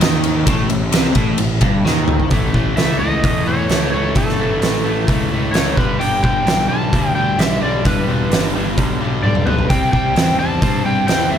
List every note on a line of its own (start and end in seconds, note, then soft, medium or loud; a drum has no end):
0.00 0.43 D#2 medium
0.00 0.46 D#3 loud
0.00 snare loud
0.00 ride medium
0.24 ride medium
0.47 0.68 A1 medium
0.47 0.69 A2 loud
0.47 kick loud
0.47 ride loud
0.70 0.92 A1 medium
0.70 0.88 A2 medium
0.70 ride medium
0.92 1.15 C2 medium
0.92 1.15 C3 loud
0.92 snare loud
0.92 ride medium
1.15 1.37 A1 medium
1.15 1.38 A2 loud
1.15 kick medium
1.15 ride medium
1.38 1.60 A1 medium
1.38 1.58 A2 medium
1.38 ride medium
1.61 1.83 G1 medium
1.61 1.84 G2 medium
1.61 kick medium
1.61 ride medium
1.85 2.28 D#2 medium
1.85 2.30 D#3 loud
1.85 snare medium
2.08 mid tom medium
2.20 floor tom medium
2.30 2.51 A1 medium
2.30 2.53 A2 medium
2.30 2.54 E3 medium
2.30 2.55 A3 medium
2.30 kick loud
2.30 open hi-hat soft
2.54 2.74 A1 medium
2.54 2.78 A2 medium
2.54 2.78 E3 medium
2.54 2.79 A3 medium
2.54 kick medium
2.77 2.97 C#2 medium
2.77 2.99 A2 medium
2.77 3.00 E3 medium
2.77 3.00 A3 medium
2.77 2.99 E5 loud
2.77 snare loud
2.77 open hi-hat soft
2.99 3.21 C#2 medium
2.99 3.22 A2 medium
2.99 3.23 E3 medium
2.99 3.24 A3 medium
2.99 3.47 D#5 medium
3.23 3.44 E2 medium
3.23 3.45 A2 medium
3.23 3.45 E3 medium
3.23 3.46 A3 medium
3.23 kick loud
3.23 open hi-hat soft
3.46 3.67 E2 medium
3.46 3.68 A2 medium
3.46 3.69 E3 medium
3.46 3.69 A3 medium
3.46 3.92 C#5 medium
3.69 3.90 C#2 medium
3.69 3.92 A2 medium
3.69 3.93 E3 medium
3.69 3.93 A3 medium
3.69 snare loud
3.69 open hi-hat soft
3.93 4.13 C#2 medium
3.93 4.15 A2 medium
3.93 4.16 E3 medium
3.93 4.16 A3 medium
3.93 4.14 C#5 medium
4.15 4.36 G1 medium
4.15 4.38 A2 medium
4.15 4.39 E3 medium
4.15 4.40 A3 medium
4.15 5.05 A4 medium
4.15 kick loud
4.15 open hi-hat soft
4.29 snare soft
4.38 4.59 G1 medium
4.38 4.61 A2 medium
4.38 4.62 E3 medium
4.38 4.62 A3 medium
4.62 4.82 A1 medium
4.62 4.84 A2 medium
4.62 4.84 E3 loud
4.62 4.85 A3 medium
4.62 snare loud
4.62 open hi-hat soft
4.85 5.05 A1 medium
4.85 5.07 A2 medium
4.85 5.07 E3 medium
4.85 5.08 A3 medium
5.08 5.28 C#2 medium
5.08 5.31 A2 medium
5.08 5.31 E3 medium
5.08 5.32 A3 medium
5.08 kick loud
5.08 open hi-hat soft
5.30 5.51 C#2 medium
5.30 5.52 A2 medium
5.30 5.53 E3 medium
5.30 5.54 A3 medium
5.52 5.74 C#2 medium
5.52 5.76 A2 medium
5.52 5.76 E3 loud
5.52 5.76 A3 medium
5.52 5.77 C#5 medium
5.52 snare loud
5.52 open hi-hat soft
5.77 5.98 G1 medium
5.77 6.00 G2 medium
5.77 5.99 D3 medium
5.77 6.00 G3 loud
5.77 6.01 B4 medium
5.77 kick medium
5.99 6.20 G1 medium
5.99 6.22 G2 medium
5.99 6.22 D3 medium
5.99 6.24 G3 medium
5.99 6.21 G5 medium
5.99 open hi-hat soft
6.23 6.44 G1 medium
6.23 6.45 G2 medium
6.23 6.45 D3 medium
6.23 6.47 G3 medium
6.23 6.68 G5 medium
6.23 kick medium
6.46 6.67 B1 medium
6.46 6.69 G2 medium
6.46 6.69 D3 medium
6.46 6.70 G3 loud
6.46 snare loud
6.46 open hi-hat soft
6.69 6.90 B1 medium
6.69 6.91 G2 medium
6.69 6.92 D3 medium
6.69 6.93 G3 medium
6.69 7.15 A5 loud
6.92 7.13 D2 medium
6.92 7.14 G2 medium
6.92 7.15 D3 medium
6.92 7.16 G3 medium
6.92 kick medium
6.92 open hi-hat soft
7.15 7.36 D2 medium
7.15 7.37 G2 medium
7.15 7.37 D3 medium
7.15 7.39 G3 medium
7.15 7.39 G5 medium
7.37 7.59 B1 medium
7.37 7.60 G2 medium
7.37 7.60 D3 medium
7.37 7.62 G3 loud
7.37 7.62 E5 medium
7.37 snare loud
7.37 open hi-hat soft
7.61 7.82 B1 medium
7.61 7.83 G2 medium
7.61 7.84 D3 medium
7.61 7.85 G3 medium
7.61 7.84 D5 medium
7.84 8.06 E1 medium
7.84 8.07 G2 medium
7.84 8.07 D3 medium
7.84 8.09 G3 loud
7.84 8.51 B4 medium
7.84 kick medium
7.84 open hi-hat soft
8.07 8.28 E1 medium
8.07 8.30 G2 medium
8.07 8.31 D3 medium
8.07 8.32 G3 medium
8.31 8.52 G1 medium
8.31 8.53 G2 medium
8.31 8.54 D3 medium
8.31 8.56 G3 medium
8.31 snare loud
8.31 open hi-hat soft
8.54 8.75 G1 medium
8.54 8.76 G2 medium
8.54 8.77 D3 medium
8.54 8.78 G3 medium
8.78 8.98 B1 medium
8.78 8.99 G2 medium
8.78 9.00 D3 medium
8.78 9.01 G3 medium
8.78 kick medium
8.78 open hi-hat soft
9.01 9.21 B1 medium
9.01 9.23 G2 medium
9.01 9.24 D3 medium
9.01 9.25 G3 medium
9.23 9.45 B1 medium
9.23 9.46 G2 medium
9.23 9.47 D3 medium
9.23 9.48 G3 loud
9.23 9.47 D5 medium
9.23 high tom soft
9.35 mid tom medium
9.46 9.67 B1 medium
9.46 9.69 G2 medium
9.46 9.69 D3 medium
9.46 9.70 G3 medium
9.46 9.70 B4 medium
9.46 mid tom medium
9.59 floor tom medium
9.69 9.91 C2 medium
9.69 9.92 C3 medium
9.69 9.93 G3 medium
9.69 9.93 C4 medium
9.69 9.91 G5 medium
9.69 kick loud
9.69 open hi-hat soft
9.93 10.13 C2 medium
9.93 10.15 C3 medium
9.93 10.15 G3 medium
9.93 10.16 C4 medium
9.93 10.39 G5 medium
9.93 kick medium
10.16 10.37 E2 medium
10.16 10.38 C3 medium
10.16 10.39 G3 medium
10.16 10.39 C4 loud
10.16 snare loud
10.16 open hi-hat soft
10.39 10.60 E2 medium
10.39 10.60 C3 medium
10.39 10.61 G3 medium
10.39 10.62 C4 medium
10.39 10.82 A5 medium
10.61 10.83 G2 medium
10.61 10.83 C3 medium
10.61 10.84 G3 medium
10.61 10.85 C4 loud
10.61 kick loud
10.61 open hi-hat soft
10.84 11.06 G2 medium
10.84 11.05 C3 medium
10.84 11.06 G3 medium
10.84 11.07 C4 medium
10.84 11.06 G5 medium
11.07 11.29 E2 medium
11.07 11.28 C3 medium
11.07 11.29 G3 medium
11.07 11.29 C4 medium
11.07 11.32 G5 medium
11.07 snare loud
11.07 open hi-hat soft
11.30 11.38 D#2 medium
11.30 11.38 C3 medium
11.30 11.38 G3 medium
11.30 11.38 C4 medium
11.30 11.38 E5 medium